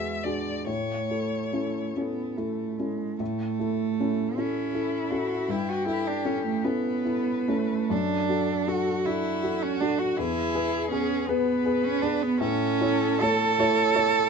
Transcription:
0.00 0.69 E2 soft
0.00 0.67 G#3 soft
0.00 0.21 F#4 soft
0.00 0.21 G#4 soft
0.00 0.25 E5 medium
0.24 0.63 D4 soft
0.24 0.63 F#4 soft
0.24 0.63 G#4 soft
0.24 0.66 D5 medium
0.65 1.08 A2 soft
0.65 1.87 A3 soft
0.65 1.94 C#5 medium
1.10 1.50 E4 soft
1.10 1.50 A4 soft
1.53 1.92 C#4 soft
1.53 1.92 E4 soft
1.53 1.92 A4 soft
1.97 2.39 B3 soft
1.97 2.34 C#4 soft
1.97 2.34 E4 soft
1.97 2.34 A4 soft
2.37 2.81 A3 soft
2.37 2.75 E4 soft
2.37 2.76 A4 soft
2.79 3.20 G#3 soft
2.79 3.16 C#4 soft
2.79 3.16 E4 soft
2.79 3.16 A4 soft
3.20 3.58 A2 soft
3.20 4.40 A3 medium
3.60 3.95 E4 soft
3.60 3.95 A4 soft
4.00 4.34 C#4 soft
4.00 4.34 E4 soft
4.00 4.34 A4 soft
4.37 4.71 C#4 soft
4.37 5.13 C#4 soft
4.37 5.52 E4 soft
4.37 4.71 E4 soft
4.37 4.71 A4 soft
4.75 5.08 E4 soft
4.75 5.08 A4 soft
5.11 5.45 C#4 soft
5.11 5.45 E4 soft
5.11 5.52 F#4 medium
5.11 5.46 A4 soft
5.48 5.86 G2 soft
5.48 5.70 E4 medium
5.48 6.66 G4 medium
5.69 5.87 F#4 medium
5.86 6.21 E4 soft
5.86 6.09 E4 medium
5.86 6.21 A4 soft
6.07 6.27 D4 soft
6.25 6.60 C#4 soft
6.25 6.45 C#4 medium
6.25 6.61 E4 soft
6.25 6.61 A4 soft
6.46 6.66 A3 medium
6.64 7.50 B3 medium
6.64 7.02 C#4 soft
6.64 7.02 E4 soft
6.64 7.02 A4 soft
6.64 7.92 B4 soft
7.05 7.45 E4 soft
7.05 7.45 A4 soft
7.48 7.93 A3 medium
7.48 7.87 C#4 soft
7.48 7.87 E4 soft
7.48 7.87 A4 soft
7.90 8.28 F#2 soft
7.90 8.70 D4 medium
7.90 9.06 A4 soft
8.29 8.63 F#4 soft
8.29 8.64 A4 soft
8.67 9.02 D4 soft
8.67 9.02 F#4 soft
8.67 9.07 F#4 medium
8.67 9.02 A4 soft
9.05 9.40 D4 soft
9.05 9.64 E4 medium
9.05 9.40 F#4 soft
9.05 10.19 F#4 soft
9.05 9.40 A4 soft
9.43 9.77 F#4 soft
9.43 9.78 A4 soft
9.63 9.82 C#4 medium
9.80 10.00 D4 medium
9.80 10.15 D4 soft
9.80 10.15 F#4 soft
9.80 10.15 A4 soft
9.99 10.18 F#4 medium
10.17 10.54 E2 soft
10.17 10.90 E4 medium
10.17 11.30 G#4 medium
10.55 10.88 G#4 soft
10.55 10.88 B4 soft
10.91 11.25 B3 soft
10.91 11.29 C#4 medium
10.91 11.25 G#4 soft
10.91 11.25 B4 soft
11.28 11.85 B3 medium
11.28 11.62 B3 soft
11.28 11.62 G#4 soft
11.28 12.40 B4 medium
11.28 11.62 B4 soft
11.66 11.99 G#4 soft
11.66 11.99 B4 soft
11.84 12.03 C#4 medium
12.02 12.37 B3 soft
12.02 12.24 D4 medium
12.02 12.37 G#4 soft
12.02 12.38 B4 soft
12.23 12.40 B3 medium
12.40 12.80 A2 medium
12.40 13.23 C#4 medium
12.40 13.61 A4 medium
12.81 13.18 E4 soft
12.81 13.18 C#5 soft
13.21 13.56 A3 soft
13.21 13.56 E4 soft
13.21 14.29 A4 medium
13.21 13.57 C#5 soft
13.59 13.92 A3 soft
13.59 13.92 E4 soft
13.59 13.96 C#5 medium
13.59 13.92 C#5 soft
13.95 14.28 E4 soft
13.95 14.29 A4 medium
13.95 14.28 C#5 soft

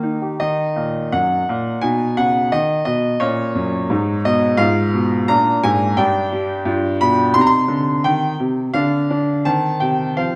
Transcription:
0.00 0.38 D#3 soft
0.00 0.15 A#3 soft
0.00 0.33 D#4 soft
0.22 0.40 G4 soft
0.40 0.69 D#3 medium
0.40 1.78 D#4 soft
0.40 1.12 D#5 medium
0.76 1.05 A#2 medium
1.12 1.41 F#2 medium
1.12 1.83 F#5 medium
1.49 1.76 A#2 medium
1.81 2.10 B2 medium
1.81 3.16 D#4 soft
1.81 2.17 G#5 medium
2.17 2.45 C#3 medium
2.17 2.52 F#5 medium
2.52 2.80 D#3 medium
2.52 2.84 D#5 medium
2.85 3.14 B2 medium
2.85 3.20 D#5 medium
3.20 3.48 A#2 medium
3.20 3.86 C#4 soft
3.20 4.24 C#5 medium
3.55 3.83 F#2 medium
3.90 4.18 G#2 medium
3.90 4.56 D#4 soft
4.25 4.53 B2 medium
4.25 4.60 D#5 medium
4.57 4.86 G#2 medium
4.57 5.24 F4 soft
4.57 5.28 F5 loud
4.94 5.21 B2 medium
5.28 5.56 A#2 medium
5.28 5.94 D4 soft
5.28 5.63 A#5 loud
5.63 5.91 G#2 medium
5.63 5.98 G#5 loud
5.97 6.25 G2 medium
5.97 6.63 D4 medium
5.97 7.01 G5 medium
6.32 6.60 G3 medium
6.65 6.93 G2 medium
6.65 7.31 F4 medium
7.01 7.29 B2 medium
7.01 7.35 B5 loud
7.34 7.62 C3 medium
7.34 8.69 D#4 soft
7.34 7.41 C6 loud
7.41 7.48 A#5 medium
7.47 8.03 C6 loud
7.68 7.96 D3 medium
8.04 8.32 D#3 medium
8.04 8.39 G5 medium
8.40 8.67 C3 medium
8.74 9.03 D3 medium
8.74 9.09 D4 soft
8.74 9.45 F5 medium
9.10 9.39 D4 medium
9.45 9.75 D#3 medium
9.45 10.14 C4 soft
9.45 9.82 A5 medium
9.80 10.11 C3 medium
9.80 10.18 G5 medium
10.17 10.36 F3 medium
10.17 10.36 C4 soft
10.17 10.36 C5 soft
10.17 10.36 F5 medium

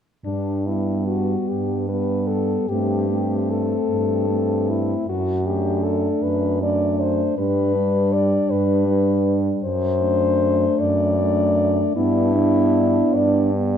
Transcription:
0.25 1.35 G2 soft
0.25 0.68 D4 soft
0.67 1.87 G3 soft
0.67 1.87 B3 soft
0.67 1.06 E4 soft
1.06 1.50 F#4 soft
1.48 2.56 G2 soft
1.48 1.88 G4 soft
1.89 2.69 G3 soft
1.89 2.68 B3 soft
1.89 2.29 B4 soft
2.27 2.70 A4 soft
2.69 3.77 G2 soft
2.69 3.09 A3 soft
2.69 3.10 C4 soft
2.69 3.51 G4 soft
3.10 4.27 A3 soft
3.10 4.27 C4 soft
3.50 4.70 A4 soft
3.91 4.95 G2 soft
4.30 5.07 A3 soft
4.30 5.07 C4 soft
4.69 5.08 E4 soft
5.08 6.10 F#2 soft
5.08 5.47 F#4 soft
5.46 6.60 A3 soft
5.46 6.60 D4 soft
5.46 5.86 G4 soft
5.85 6.25 A4 soft
6.24 7.25 F#2 soft
6.24 6.62 B4 soft
6.62 7.37 A3 soft
6.62 7.37 D4 soft
6.62 7.03 D5 medium
7.01 7.37 C5 soft
7.38 8.38 G2 soft
7.38 7.75 G3 soft
7.38 7.75 D4 soft
7.38 8.15 B4 medium
7.75 8.86 G3 soft
7.75 8.86 D4 soft
8.13 8.53 D5 medium
8.51 9.50 G2 soft
8.51 9.38 B4 medium
8.87 9.62 G3 soft
8.87 9.62 D4 soft
9.64 10.66 F#2 soft
9.64 10.82 C5 medium
10.01 11.17 A3 soft
10.01 11.17 D4 soft
10.81 11.83 F#2 soft
10.81 11.96 D5 medium
11.19 11.95 A3 soft
11.19 11.95 D4 soft
11.96 13.00 G2 medium
11.96 12.34 B3 soft
11.96 12.35 D4 soft
11.96 13.17 E4 medium
12.35 13.51 B3 soft
12.35 13.52 D4 soft
13.14 13.78 G2 medium
13.14 13.55 D5 medium
13.54 13.78 B3 soft
13.54 13.78 D4 soft

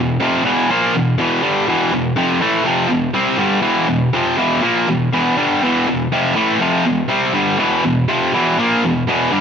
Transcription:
0.00 0.17 E2 medium
0.00 0.17 B2 medium
0.20 0.44 F2 medium
0.20 0.44 C3 medium
0.20 0.45 F3 loud
0.44 0.69 E2 medium
0.44 0.69 B2 loud
0.44 0.69 E3 loud
0.70 0.94 A#2 medium
0.70 0.94 F3 medium
0.70 0.94 A#3 loud
0.94 1.14 E2 medium
0.94 1.14 B2 medium
1.18 1.42 E2 medium
1.18 1.43 B2 loud
1.18 1.43 E3 loud
1.42 1.67 G2 loud
1.42 1.67 D3 loud
1.42 1.67 G3 loud
1.67 1.91 E2 medium
1.67 1.92 B2 loud
1.67 1.93 E3 loud
1.92 2.12 E2 medium
1.92 2.13 B2 medium
2.16 2.41 F2 medium
2.16 2.40 C3 medium
2.16 2.41 F3 loud
2.40 2.64 A2 medium
2.40 2.65 E3 loud
2.40 2.66 A3 loud
2.63 2.89 F2 medium
2.63 2.88 C3 loud
2.63 2.90 F3 loud
2.89 3.10 E2 medium
2.89 3.10 B2 medium
3.14 3.38 C3 medium
3.14 3.38 G3 medium
3.14 3.39 C4 loud
3.38 3.61 G2 medium
3.38 3.62 D3 loud
3.38 3.62 G3 loud
3.62 3.87 E2 medium
3.62 3.87 B2 medium
3.62 3.87 E3 loud
3.88 4.08 E2 medium
3.88 4.09 B2 medium
4.13 4.37 F2 medium
4.13 4.38 C3 medium
4.13 4.37 F3 loud
4.37 4.62 E2 medium
4.37 4.61 B2 loud
4.37 4.62 E3 loud
4.61 4.86 A#2 loud
4.61 4.87 F3 medium
4.61 4.87 A#3 loud
4.88 5.08 E2 medium
4.88 5.08 B2 medium
5.13 5.36 E2 medium
5.13 5.37 B2 loud
5.13 5.37 E3 loud
5.37 5.61 G2 medium
5.37 5.61 D3 medium
5.37 5.61 G3 medium
5.62 5.86 E2 medium
5.62 5.86 B2 medium
5.62 5.87 E3 loud
5.88 6.07 E2 medium
5.88 6.07 B2 medium
6.12 6.36 F2 medium
6.12 6.35 C3 medium
6.12 6.36 F3 medium
6.36 6.60 A2 medium
6.36 6.60 E3 medium
6.36 6.60 A3 loud
6.60 6.84 F2 medium
6.60 6.84 C3 loud
6.60 6.85 F3 loud
6.86 7.05 E2 medium
6.86 7.05 B2 medium
7.09 7.33 C3 loud
7.09 7.34 G3 loud
7.09 7.34 C4 loud
7.34 7.58 G2 medium
7.34 7.58 D3 loud
7.34 7.58 G3 loud
7.59 7.83 E2 loud
7.59 7.83 B2 medium
7.59 7.83 E3 loud
7.84 8.04 E2 medium
7.84 8.04 B2 medium
8.08 8.32 F2 medium
8.08 8.32 C3 medium
8.08 8.33 F3 loud
8.33 8.57 E2 medium
8.33 8.58 B2 medium
8.33 8.58 E3 loud
8.59 8.82 A#2 medium
8.59 8.83 F3 loud
8.59 8.83 A#3 loud
8.85 9.03 E2 medium
8.85 9.04 B2 medium
9.08 9.31 E2 loud
9.08 9.32 B2 medium
9.08 9.32 E3 loud
9.32 9.41 G2 medium
9.32 9.41 D3 medium
9.32 9.41 G3 loud

